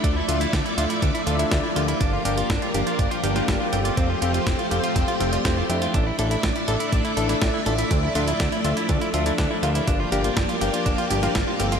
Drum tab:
HH |x-xxxxxxxxxxx-xx|x-xxxxxxxxxxx-xx|x-xxxxxxxxxxx-xx|x-xxxxxxxxxxx-xx|
SD |----o---o---o---|----o------oo---|----o---o---o---|----o------oo---|
BD |o---o---o---o---|o---o---o---o---|o---o---o---o---|o---o---o---o---|

HH |x-xxxxxxxxxxx-xx|x-xxxxxxxxxxx-xx|
SD |----o---o---o---|----o------oo---|
BD |o---o---o---o---|o---o---o---o---|